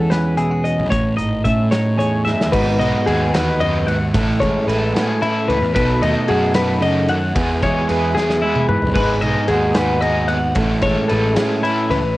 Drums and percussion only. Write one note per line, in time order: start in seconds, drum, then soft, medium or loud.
0.11 snare loud
0.11 closed hi-hat medium
0.38 closed hi-hat medium
0.65 closed hi-hat medium
0.92 kick loud
0.92 closed hi-hat medium
1.18 closed hi-hat medium
1.45 kick medium
1.45 closed hi-hat medium
1.72 snare loud
1.72 closed hi-hat medium
2.00 closed hi-hat medium
2.27 snare medium
2.41 snare medium
2.53 kick loud
2.53 crash loud
2.81 ride medium
3.07 ride medium
3.34 snare loud
3.34 ride medium
3.61 ride medium
3.88 ride medium
4.14 kick loud
4.14 ride loud
4.42 kick medium
4.42 ride medium
4.69 ride medium
4.96 snare loud
4.96 ride medium
5.22 ride medium
5.50 ride medium
5.76 kick loud
5.76 ride loud
6.03 ride medium
6.28 ride medium
6.54 snare loud
6.54 ride medium
6.82 ride medium
7.08 ride medium
7.36 kick loud
7.36 ride loud
7.62 kick medium
7.62 ride medium
7.89 ride medium
8.17 snare medium
8.30 snare medium
8.56 mid tom medium
8.69 mid tom medium
8.82 floor tom medium
8.95 kick loud
8.95 crash loud
9.22 ride medium
9.48 ride medium
9.74 snare loud
9.74 ride medium
10.02 ride medium
10.28 ride medium
10.55 kick loud
10.55 ride loud
10.82 kick medium
10.82 ride medium
11.09 ride medium
11.36 snare loud
11.36 ride loud
11.64 ride medium
11.91 ride medium